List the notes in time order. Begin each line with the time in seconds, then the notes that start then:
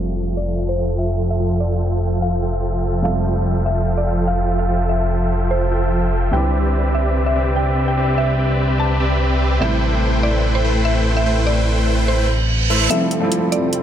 Already playing: F1 F3 G3 A3 C4 F4 A4 E5 G5
0.37 D5
0.69 C5
0.78 F3 F4 A4 E5 G5
0.99 E5
1.31 E5
1.40 F3 F4 A4 E5 G5
1.60 D5
2.22 F5
2.43 F3 F4 A4 E5 G5
3.02 F3 G3 A3 C4 F4 A4 E5 F5 G5
3.06 E5
3.66 E5
3.98 D5
4.07 F3 F4 A4 E5 G5
4.27 F5
4.59 F5
4.69 F3 F4 A4 E5 G5
4.89 E5
5.51 C5
5.71 F3 F4 A4 E5 G5
6.31 C2 D3 G3 C4 E4 G4 B4 D5 E5 G5
6.95 E5
7.26 E5
7.36 C4 G4 B4 D5 E5
7.56 G5
7.88 G5
7.97 C4 G4 B4 D5 E5
8.18 E5
8.80 A5
9.00 C4 G4 B4 D5 E5
9.60 A1 C3 G3 A3 E4 B4 C5 E5 G5
10.23 D5
10.55 C5
10.64 A3 E4 B4 C5 G5
10.85 E5
11.17 E5
11.26 A3 E4 B4 C5 G5
11.47 D5
12.08 C5, reverse cymbal
12.70 A3 E4 B4 C5 E5
12.90 F1 F3 G3 A3 C4 E4 A4 E5 G5, closed hi-hat, riser
13.11 closed hi-hat
13.20 F3 G3 A3 C4
13.24 E4
13.32 closed hi-hat
13.52 D5, closed hi-hat
13.73 closed hi-hat